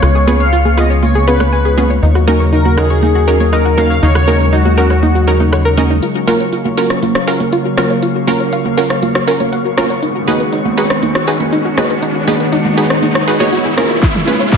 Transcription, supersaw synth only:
0, 0, Header, 1, 2, 480
1, 0, Start_track
1, 0, Key_signature, 6, "major"
1, 0, Tempo, 500000
1, 24, Time_signature, 4, 2, 24, 8
1, 13990, End_track
2, 0, Start_track
2, 0, Title_t, "Supersaw synth"
2, 0, Program_c, 0, 81
2, 0, Note_on_c, 0, 73, 110
2, 387, Note_on_c, 0, 77, 107
2, 404, Note_off_c, 0, 73, 0
2, 720, Note_off_c, 0, 77, 0
2, 745, Note_on_c, 0, 75, 93
2, 853, Note_off_c, 0, 75, 0
2, 985, Note_on_c, 0, 73, 92
2, 1226, Note_on_c, 0, 71, 90
2, 1232, Note_off_c, 0, 73, 0
2, 1449, Note_off_c, 0, 71, 0
2, 1466, Note_on_c, 0, 71, 78
2, 1801, Note_off_c, 0, 71, 0
2, 2425, Note_on_c, 0, 70, 98
2, 2665, Note_on_c, 0, 68, 99
2, 2672, Note_off_c, 0, 70, 0
2, 3385, Note_on_c, 0, 70, 93
2, 3406, Note_off_c, 0, 68, 0
2, 3626, Note_on_c, 0, 77, 105
2, 3632, Note_off_c, 0, 70, 0
2, 3865, Note_on_c, 0, 73, 116
2, 3872, Note_off_c, 0, 77, 0
2, 4345, Note_on_c, 0, 66, 93
2, 4359, Note_off_c, 0, 73, 0
2, 5506, Note_off_c, 0, 66, 0
2, 13990, End_track
0, 0, End_of_file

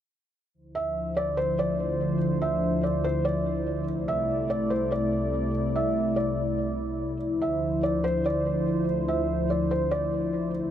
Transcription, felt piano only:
0, 0, Header, 1, 2, 480
1, 0, Start_track
1, 0, Key_signature, -1, "minor"
1, 0, Tempo, 416667
1, 622, Time_signature, 4, 2, 24, 8
1, 12336, End_track
2, 0, Start_track
2, 0, Title_t, "Felt piano"
2, 0, Program_c, 0, 0
2, 864, Note_on_c, 0, 76, 72
2, 1315, Note_off_c, 0, 76, 0
2, 1343, Note_on_c, 0, 74, 83
2, 1571, Note_off_c, 0, 74, 0
2, 1581, Note_on_c, 0, 72, 83
2, 1810, Note_off_c, 0, 72, 0
2, 1830, Note_on_c, 0, 74, 87
2, 2503, Note_off_c, 0, 74, 0
2, 2783, Note_on_c, 0, 76, 75
2, 3234, Note_off_c, 0, 76, 0
2, 3264, Note_on_c, 0, 74, 61
2, 3491, Note_off_c, 0, 74, 0
2, 3507, Note_on_c, 0, 72, 83
2, 3733, Note_off_c, 0, 72, 0
2, 3741, Note_on_c, 0, 74, 88
2, 4419, Note_off_c, 0, 74, 0
2, 4701, Note_on_c, 0, 76, 79
2, 5153, Note_off_c, 0, 76, 0
2, 5184, Note_on_c, 0, 74, 85
2, 5411, Note_off_c, 0, 74, 0
2, 5418, Note_on_c, 0, 72, 76
2, 5648, Note_off_c, 0, 72, 0
2, 5666, Note_on_c, 0, 74, 83
2, 6341, Note_off_c, 0, 74, 0
2, 6630, Note_on_c, 0, 76, 74
2, 7078, Note_off_c, 0, 76, 0
2, 7099, Note_on_c, 0, 74, 73
2, 8255, Note_off_c, 0, 74, 0
2, 8543, Note_on_c, 0, 76, 74
2, 8994, Note_off_c, 0, 76, 0
2, 9023, Note_on_c, 0, 74, 82
2, 9251, Note_off_c, 0, 74, 0
2, 9261, Note_on_c, 0, 72, 87
2, 9490, Note_off_c, 0, 72, 0
2, 9510, Note_on_c, 0, 74, 86
2, 10184, Note_off_c, 0, 74, 0
2, 10464, Note_on_c, 0, 76, 68
2, 10914, Note_off_c, 0, 76, 0
2, 10944, Note_on_c, 0, 74, 65
2, 11171, Note_off_c, 0, 74, 0
2, 11186, Note_on_c, 0, 72, 79
2, 11412, Note_off_c, 0, 72, 0
2, 11420, Note_on_c, 0, 74, 87
2, 12098, Note_off_c, 0, 74, 0
2, 12336, End_track
0, 0, End_of_file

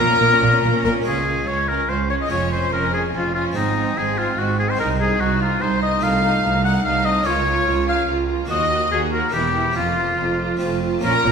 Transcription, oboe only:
0, 0, Header, 1, 2, 480
1, 0, Start_track
1, 0, Key_signature, -5, "major"
1, 0, Tempo, 420168
1, 1208, Time_signature, 3, 2, 24, 8
1, 3113, Tempo, 412939
1, 6961, Key_signature, -5, "minor"
1, 10313, Tempo, 423131
1, 13036, End_track
2, 0, Start_track
2, 0, Title_t, "Oboe"
2, 0, Program_c, 0, 68
2, 0, Note_on_c, 0, 70, 93
2, 942, Note_off_c, 0, 70, 0
2, 969, Note_on_c, 0, 70, 75
2, 1078, Note_off_c, 0, 70, 0
2, 1213, Note_on_c, 0, 68, 61
2, 1685, Note_on_c, 0, 73, 63
2, 1702, Note_off_c, 0, 68, 0
2, 1924, Note_on_c, 0, 70, 60
2, 1941, Note_off_c, 0, 73, 0
2, 2159, Note_on_c, 0, 72, 54
2, 2176, Note_off_c, 0, 70, 0
2, 2394, Note_off_c, 0, 72, 0
2, 2401, Note_on_c, 0, 73, 60
2, 2454, Note_off_c, 0, 73, 0
2, 2531, Note_on_c, 0, 75, 59
2, 2629, Note_off_c, 0, 75, 0
2, 2636, Note_on_c, 0, 73, 67
2, 2871, Note_off_c, 0, 73, 0
2, 2876, Note_on_c, 0, 72, 64
2, 3109, Note_off_c, 0, 72, 0
2, 3119, Note_on_c, 0, 70, 65
2, 3353, Note_off_c, 0, 70, 0
2, 3360, Note_on_c, 0, 68, 57
2, 3467, Note_off_c, 0, 68, 0
2, 3595, Note_on_c, 0, 65, 65
2, 3832, Note_off_c, 0, 65, 0
2, 3838, Note_on_c, 0, 65, 59
2, 3946, Note_off_c, 0, 65, 0
2, 4083, Note_on_c, 0, 63, 66
2, 4567, Note_on_c, 0, 68, 65
2, 4585, Note_off_c, 0, 63, 0
2, 4809, Note_on_c, 0, 65, 64
2, 4827, Note_off_c, 0, 68, 0
2, 5044, Note_on_c, 0, 66, 61
2, 5061, Note_off_c, 0, 65, 0
2, 5276, Note_off_c, 0, 66, 0
2, 5283, Note_on_c, 0, 68, 65
2, 5414, Note_on_c, 0, 72, 66
2, 5432, Note_off_c, 0, 68, 0
2, 5515, Note_off_c, 0, 72, 0
2, 5522, Note_on_c, 0, 70, 71
2, 5630, Note_off_c, 0, 70, 0
2, 5759, Note_on_c, 0, 68, 74
2, 5998, Note_on_c, 0, 66, 76
2, 6015, Note_off_c, 0, 68, 0
2, 6238, Note_off_c, 0, 66, 0
2, 6243, Note_on_c, 0, 65, 69
2, 6474, Note_on_c, 0, 72, 78
2, 6492, Note_off_c, 0, 65, 0
2, 6708, Note_off_c, 0, 72, 0
2, 6715, Note_on_c, 0, 75, 73
2, 6954, Note_on_c, 0, 77, 85
2, 6971, Note_off_c, 0, 75, 0
2, 7662, Note_off_c, 0, 77, 0
2, 7669, Note_on_c, 0, 78, 74
2, 7778, Note_off_c, 0, 78, 0
2, 7909, Note_on_c, 0, 77, 86
2, 8140, Note_on_c, 0, 75, 76
2, 8158, Note_off_c, 0, 77, 0
2, 8386, Note_on_c, 0, 73, 85
2, 8404, Note_off_c, 0, 75, 0
2, 9108, Note_off_c, 0, 73, 0
2, 9114, Note_on_c, 0, 77, 71
2, 9348, Note_off_c, 0, 77, 0
2, 9834, Note_on_c, 0, 75, 79
2, 10281, Note_off_c, 0, 75, 0
2, 10311, Note_on_c, 0, 68, 77
2, 10418, Note_off_c, 0, 68, 0
2, 10544, Note_on_c, 0, 70, 61
2, 10780, Note_off_c, 0, 70, 0
2, 10786, Note_on_c, 0, 67, 71
2, 11260, Note_off_c, 0, 67, 0
2, 11268, Note_on_c, 0, 65, 68
2, 12216, Note_off_c, 0, 65, 0
2, 12719, Note_on_c, 0, 70, 86
2, 13036, Note_off_c, 0, 70, 0
2, 13036, End_track
0, 0, End_of_file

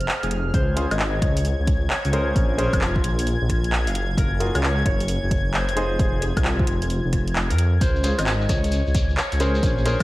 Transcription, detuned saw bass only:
0, 0, Header, 1, 2, 480
1, 0, Start_track
1, 0, Key_signature, -5, "major"
1, 0, Tempo, 454545
1, 569, Time_signature, 4, 2, 24, 8
1, 10592, End_track
2, 0, Start_track
2, 0, Title_t, "Detuned saw bass"
2, 0, Program_c, 0, 39
2, 240, Note_on_c, 0, 29, 76
2, 539, Note_off_c, 0, 29, 0
2, 568, Note_on_c, 0, 37, 100
2, 913, Note_off_c, 0, 37, 0
2, 961, Note_on_c, 0, 32, 95
2, 1259, Note_off_c, 0, 32, 0
2, 1287, Note_on_c, 0, 37, 91
2, 1632, Note_off_c, 0, 37, 0
2, 1684, Note_on_c, 0, 37, 103
2, 1981, Note_off_c, 0, 37, 0
2, 2163, Note_on_c, 0, 37, 81
2, 2460, Note_off_c, 0, 37, 0
2, 2487, Note_on_c, 0, 34, 97
2, 2832, Note_off_c, 0, 34, 0
2, 2883, Note_on_c, 0, 29, 98
2, 3180, Note_off_c, 0, 29, 0
2, 3209, Note_on_c, 0, 34, 89
2, 3553, Note_off_c, 0, 34, 0
2, 3603, Note_on_c, 0, 34, 106
2, 4084, Note_on_c, 0, 30, 82
2, 4100, Note_off_c, 0, 34, 0
2, 4381, Note_off_c, 0, 30, 0
2, 4408, Note_on_c, 0, 30, 100
2, 4753, Note_off_c, 0, 30, 0
2, 4804, Note_on_c, 0, 37, 98
2, 5101, Note_off_c, 0, 37, 0
2, 5128, Note_on_c, 0, 30, 90
2, 5473, Note_off_c, 0, 30, 0
2, 5523, Note_on_c, 0, 30, 106
2, 6004, Note_on_c, 0, 29, 78
2, 6020, Note_off_c, 0, 30, 0
2, 6301, Note_off_c, 0, 29, 0
2, 6327, Note_on_c, 0, 29, 101
2, 6672, Note_off_c, 0, 29, 0
2, 6723, Note_on_c, 0, 36, 95
2, 7020, Note_off_c, 0, 36, 0
2, 7050, Note_on_c, 0, 29, 91
2, 7394, Note_off_c, 0, 29, 0
2, 7444, Note_on_c, 0, 29, 99
2, 7925, Note_on_c, 0, 41, 97
2, 7940, Note_off_c, 0, 29, 0
2, 8221, Note_off_c, 0, 41, 0
2, 8248, Note_on_c, 0, 37, 101
2, 8593, Note_off_c, 0, 37, 0
2, 8644, Note_on_c, 0, 32, 97
2, 8941, Note_off_c, 0, 32, 0
2, 8969, Note_on_c, 0, 37, 95
2, 9313, Note_off_c, 0, 37, 0
2, 9366, Note_on_c, 0, 37, 105
2, 9662, Note_off_c, 0, 37, 0
2, 9846, Note_on_c, 0, 37, 79
2, 10142, Note_off_c, 0, 37, 0
2, 10169, Note_on_c, 0, 34, 103
2, 10513, Note_off_c, 0, 34, 0
2, 10592, End_track
0, 0, End_of_file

